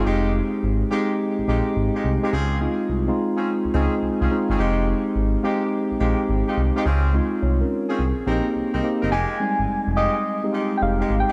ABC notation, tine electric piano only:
X:1
M:4/4
L:1/16
Q:"Swing 16ths" 1/4=106
K:Fm
V:1 name="Tine electric piano"
[A,CEG]4 z2 [A,CEG]3 z [A,CEG]3 z2 [A,CEG] | z2 [A,CEF]2 z [A,CEF]3 z2 [A,CEA]3 z [A,CEF] z | [A,CEG]4 z2 [A,CEG]3 z [A,CEG]3 z2 [A,CEG] | z2 [A,CEF]2 [Fd] [DB]2 [CA]2 z [B,CEG]3 z [B,CEG] z |
z2 [G,A,CE]4- [G,A,CE] z2 [A,CEG]2 z [A,CEG] [A,CEG]3 |]